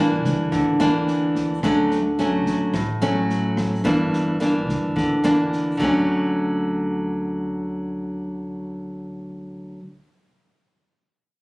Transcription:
0.00 0.25 G1 medium
0.00 0.49 G2 soft
0.00 0.76 E3 soft
0.00 0.76 A#3 soft
0.00 0.76 D4 soft
0.24 0.50 D2 medium
0.24 kick soft
0.24 snare soft
0.52 0.65 D2 medium
0.52 1.60 D3 soft
0.52 kick medium
0.52 snare soft
0.80 1.59 D2 medium
0.80 1.59 E3 medium
0.80 1.59 A#3 medium
0.80 1.59 D4 medium
0.80 cross-stick medium
0.80 snare soft
1.08 snare soft
1.35 kick soft
1.35 snare soft
1.63 2.46 D2 medium
1.63 2.72 D3 soft
1.63 1.99 F#3 medium
1.63 1.99 A3 soft
1.63 1.99 C#4 soft
1.63 kick medium
1.63 cross-stick medium
1.63 snare soft
1.91 snare soft
2.18 2.74 F#3 soft
2.18 2.74 A3 soft
2.18 2.74 C#4 soft
2.18 snare soft
2.46 2.72 A1 medium
2.46 kick soft
2.46 snare soft
2.73 2.87 A1 medium
2.73 3.82 A2 medium
2.73 kick soft
2.73 cross-stick soft
2.73 snare soft
3.02 3.81 A1 medium
3.02 3.81 F#3 medium
3.02 3.81 A3 medium
3.02 3.81 C#4 medium
3.02 snare soft
3.30 snare soft
3.57 kick soft
3.57 cross-stick medium
3.57 snare soft
3.84 4.68 G1 medium
3.84 4.93 G2 medium
3.84 4.36 E3 soft
3.84 4.36 A#3 medium
3.84 4.36 D4 medium
3.84 kick medium
3.84 snare soft
4.13 snare soft
4.40 5.20 E3 soft
4.40 5.20 A#3 soft
4.40 5.20 D4 soft
4.40 cross-stick soft
4.40 snare soft
4.68 4.94 D2 medium
4.68 kick soft
4.68 snare soft
4.96 5.09 D2 medium
4.96 5.76 D3 soft
4.96 kick medium
4.96 snare soft
5.24 5.76 D2 medium
5.24 5.79 E3 soft
5.24 5.80 A#3 medium
5.24 5.80 D4 medium
5.24 cross-stick medium
5.24 snare soft
5.53 snare soft
5.77 9.76 D2 medium
5.77 9.79 D3 medium
5.77 9.80 F#3 medium
5.77 kick medium
5.77 crash medium
5.82 9.81 A3 medium
5.82 9.82 C#4 medium

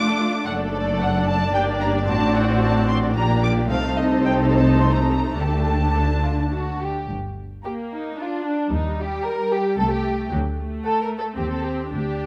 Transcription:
0.00 0.42 A3 medium
0.00 0.42 D4 medium
0.00 0.42 D5 medium
0.00 0.46 D6 loud
0.06 0.19 A4 medium
0.18 0.32 F4 medium
0.33 0.46 D4 medium
0.45 1.50 F#1 medium
0.45 1.50 F#2 medium
0.45 1.50 A3 medium
0.45 3.66 D4 medium
0.45 1.50 A4 medium
0.45 3.66 D5 medium
0.45 0.54 F#5 medium
0.73 0.99 D5 medium
1.00 1.27 F#5 medium
1.28 1.54 A5 medium
1.54 2.07 G1 medium
1.54 2.07 G2 medium
1.54 2.04 A#3 medium
1.54 2.04 G4 medium
1.54 1.62 G5 medium
1.81 1.89 A#5 medium
2.08 3.16 A1 medium
2.08 3.16 A2 medium
2.08 3.12 C4 medium
2.08 3.12 F#4 medium
2.08 2.35 A5 medium
2.35 2.62 F#5 medium
2.62 2.89 A5 medium
2.89 2.97 C6 medium
3.16 3.70 A#1 medium
3.16 3.70 A#2 medium
3.16 3.67 A#3 medium
3.16 3.67 G4 medium
3.16 3.42 A#5 medium
3.43 3.51 D6 medium
3.70 5.37 C2 medium
3.70 5.37 C3 medium
3.70 6.84 A3 medium
3.70 5.33 D#4 medium
3.70 5.33 A4 medium
3.70 5.33 C5 medium
3.70 3.97 F5 medium
3.98 4.25 D#5 medium
4.25 4.33 G5 medium
4.53 4.80 A5 medium
4.80 4.94 C6 medium
4.94 5.36 A#5 medium
5.36 6.88 D2 medium
5.36 6.89 D3 medium
5.36 6.84 D4 soft
5.36 5.85 G4 medium
5.36 5.85 A4 soft
5.36 6.80 A5 medium
5.95 6.03 A4 medium
6.23 6.31 F4 medium
6.52 6.80 F#4 medium
6.82 7.10 G4 medium
7.09 7.53 G1 soft
7.09 7.53 G2 soft
7.64 8.15 A#3 soft
7.64 7.73 G4 soft
7.64 8.05 A#5 soft
7.92 8.18 D#4 soft
8.19 8.72 D4 soft
8.19 8.46 F4 medium
8.19 8.58 A#5 soft
8.45 8.71 D4 medium
8.71 9.14 D#2 medium
8.71 9.14 D#2 soft
8.71 9.78 G3 soft
8.71 8.98 D#4 medium
8.99 9.26 G4 medium
9.26 9.52 A#4 medium
9.26 9.65 G5 soft
9.52 9.79 G4 medium
9.78 10.21 C2 medium
9.78 10.32 A3 medium
9.78 9.91 A4 medium
9.78 10.18 A5 soft
9.91 10.31 G4 medium
10.31 10.73 D2 medium
10.31 10.74 D2 medium
10.31 10.39 F#3 soft
10.58 11.36 A3 medium
10.85 11.01 A4 medium
10.85 11.25 F#5 soft
11.02 11.09 A#4 medium
11.19 11.27 A4 medium
11.37 11.81 D#2 soft
11.37 11.82 D#2 soft
11.37 11.93 C4 soft
11.37 11.51 G4 medium
11.37 11.79 G5 soft
11.51 11.65 A4 soft
11.65 11.92 G4 medium
11.93 12.26 D2 soft
11.93 12.26 D4 soft
11.93 12.26 G4 medium

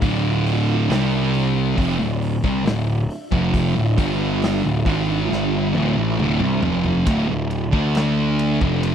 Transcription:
0.00 0.86 D1 medium
0.00 0.88 D2 loud
0.00 0.88 A2 loud
0.00 0.89 D3 loud
0.00 0.85 D4 medium
0.00 0.86 F4 medium
0.00 0.87 F5 medium
0.00 kick loud
0.00 open hi-hat medium
0.46 open hi-hat medium
0.89 1.74 C2 medium
0.89 1.76 C3 medium
0.89 1.76 G3 loud
0.89 1.76 C4 loud
0.89 snare loud
0.89 open hi-hat medium
1.34 open hi-hat medium
1.76 1.98 F1 loud
1.76 1.98 F2 loud
1.76 1.99 C3 loud
1.76 7.02 D4 medium
1.76 7.03 F4 medium
1.76 7.03 E5 medium
1.76 kick medium
1.76 open hi-hat medium
1.99 2.41 D1 medium
1.99 2.35 D2 medium
1.99 2.35 A2 medium
2.22 open hi-hat medium
2.44 2.64 C2 medium
2.44 2.64 C3 medium
2.44 2.65 G3 medium
2.44 kick loud
2.66 3.07 D1 medium
2.66 3.01 D2 medium
2.66 3.01 A2 medium
2.66 snare loud
2.66 open hi-hat medium
3.10 open hi-hat medium
3.31 3.73 F1 loud
3.31 3.74 F2 medium
3.31 3.75 C3 loud
3.31 3.75 F3 loud
3.31 kick loud
3.54 kick loud
3.54 open hi-hat medium
3.75 3.97 D1 medium
3.75 3.97 D2 medium
3.75 3.98 A2 medium
3.98 4.60 G1 medium
3.98 4.63 G2 medium
3.98 4.63 D3 medium
3.98 4.63 G3 loud
3.98 kick loud
3.98 open hi-hat medium
4.42 snare loud
4.42 open hi-hat medium
4.64 4.85 D1 medium
4.64 4.86 D2 medium
4.64 4.86 A2 medium
4.86 5.27 G#1 medium
4.86 5.29 G#2 medium
4.86 5.29 D#3 loud
4.86 5.30 G#3 loud
4.86 kick loud
4.86 open hi-hat medium
5.30 5.72 G1 medium
5.30 5.73 G2 loud
5.30 5.73 D3 loud
5.30 5.74 G3 loud
5.30 snare medium
5.74 5.95 D1 medium
5.74 5.95 D2 medium
5.74 5.95 A2 loud
5.74 high tom medium
5.96 6.17 A1 medium
5.96 6.17 A2 medium
5.96 6.17 E3 medium
6.19 6.39 D1 medium
6.19 6.40 D2 medium
6.19 6.40 A2 loud
6.19 mid tom medium
6.40 6.61 C2 medium
6.40 6.62 C3 medium
6.40 6.62 G3 loud
6.40 mid tom medium
6.62 7.04 F1 medium
6.62 7.05 F2 medium
6.62 7.06 C3 loud
6.62 7.06 F3 loud
6.62 floor tom loud
6.84 floor tom medium
7.06 7.27 D1 medium
7.06 7.27 D2 medium
7.06 7.28 A2 loud
7.06 8.95 D4 medium
7.06 8.95 A4 medium
7.06 8.95 E5 medium
7.06 kick loud
7.06 ride medium
7.28 7.71 D1 medium
7.28 7.64 D2 medium
7.28 7.64 A2 medium
7.51 ride medium
7.73 8.58 D2 medium
7.73 8.60 D3 medium
7.73 8.61 A3 medium
7.73 8.61 D4 loud
7.73 kick loud
7.95 snare loud
7.95 ride medium
8.39 ride medium
8.61 8.95 F1 medium
8.61 8.95 F2 medium
8.61 8.95 C3 loud
8.61 8.95 F3 loud
8.61 kick loud
8.83 ride medium

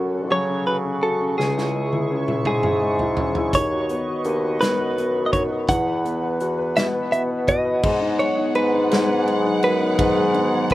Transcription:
0.00 0.32 F#2 medium
0.00 0.30 F#3 medium
0.00 0.14 C#4 soft
0.00 0.67 F#4 soft
0.00 1.36 A4 medium
0.00 1.36 F#5 medium
0.00 5.65 C#6 medium
0.14 0.48 C#4 soft
0.30 1.34 C#3 medium
0.30 1.35 F#3 medium
0.30 0.66 C#5 medium
0.49 0.83 C#4 soft
0.67 1.01 F#4 soft
0.67 0.76 B4 medium
0.85 1.19 C#4 soft
1.02 1.37 F#4 soft
1.02 1.38 A4 medium
1.20 1.38 C#4 soft
1.38 2.06 C#2 medium
1.38 3.50 C#3 medium
1.38 2.15 G#4 medium
1.38 3.52 G#4 medium
1.38 3.52 E5 medium
1.38 snare medium
1.57 1.92 E4 soft
1.57 snare soft
1.75 2.45 G#3 soft
1.93 2.27 E4 soft
1.93 high tom soft
2.10 2.43 C#2 medium
2.10 3.17 C#4 soft
2.28 2.62 E4 soft
2.28 mid tom medium
2.45 3.49 G#2 medium
2.45 2.80 G#3 medium
2.45 3.57 G#4 medium
2.45 mid tom medium
2.63 2.98 E4 soft
2.63 mid tom medium
2.82 3.51 G#3 soft
2.99 3.35 E4 soft
2.99 floor tom medium
3.17 3.53 C#4 soft
3.17 floor tom medium
3.35 3.53 E4 medium
3.35 floor tom medium
3.53 3.95 D#2 medium
3.53 5.65 D#3 medium
3.53 7.80 B4 medium
3.53 4.22 C#5 medium
3.53 5.67 D#5 medium
3.53 kick medium
3.53 closed hi-hat medium
3.72 4.06 F#4 medium
3.89 4.60 B3 soft
3.89 closed hi-hat soft
4.08 4.42 F#4 soft
4.24 4.59 D#2 loud
4.24 5.31 D#4 medium
4.24 closed hi-hat soft
4.44 4.77 F#4 soft
4.61 5.65 F#2 medium
4.61 4.95 B3 medium
4.61 5.26 B4 medium
4.61 snare medium
4.61 closed hi-hat medium
4.79 5.14 F#4 soft
4.97 5.66 B3 medium
4.97 closed hi-hat soft
5.15 5.49 F#4 medium
5.26 5.32 D#5 medium
5.32 5.67 D#4 medium
5.32 5.42 C#5 medium
5.32 kick medium
5.32 closed hi-hat soft
5.51 5.68 F#4 soft
5.68 6.36 E2 medium
5.68 7.80 E3 medium
5.68 7.81 F#5 medium
5.68 7.44 F#5 medium
5.68 kick loud
5.68 closed hi-hat medium
5.87 6.22 B4 medium
6.04 6.74 B3 soft
6.04 closed hi-hat soft
6.23 6.57 B4 medium
6.40 6.74 E2 medium
6.40 7.46 F#4 medium
6.40 closed hi-hat soft
6.59 6.93 B4 medium
6.76 7.80 B2 medium
6.76 7.12 B3 medium
6.76 6.86 E5 loud
6.76 snare loud
6.76 closed hi-hat medium
6.94 7.29 B4 soft
7.12 7.82 B3 medium
7.12 7.22 E5 medium
7.12 closed hi-hat soft
7.31 7.64 B4 soft
7.48 7.83 F#4 medium
7.48 8.19 D#5 loud
7.48 kick medium
7.48 closed hi-hat soft
7.65 7.83 B4 medium
7.83 8.25 G#2 medium
7.83 10.74 F#3 medium
7.83 8.17 G#3 medium
7.83 10.74 B3 medium
7.83 10.74 G#4 medium
7.83 10.74 F#5 medium
7.83 kick loud
7.83 crash medium
8.01 8.36 D#4 medium
8.19 8.54 G#3 medium
8.19 8.55 C#5 medium
8.19 ride soft
8.37 8.72 D#4 soft
8.55 9.59 G#2 medium
8.55 8.90 G#3 medium
8.55 9.63 B4 medium
8.55 ride soft
8.74 9.07 D#4 medium
8.91 9.26 G#3 medium
8.91 snare loud
8.91 ride medium
9.09 9.43 D#4 medium
9.27 9.62 G#3 medium
9.27 ride soft
9.45 9.79 D#4 soft
9.63 9.97 F#2 medium
9.63 10.15 G#3 medium
9.63 10.71 B4 medium
9.63 ride medium
9.81 10.33 D#4 soft
9.99 10.66 G#2 loud
9.99 10.74 D#3 medium
9.99 kick loud
9.99 ride medium
10.16 10.51 G#3 medium
10.34 10.70 D#4 medium
10.34 ride soft
10.52 10.74 G#3 medium
10.70 10.74 G#2 loud
10.70 kick medium
10.70 ride medium

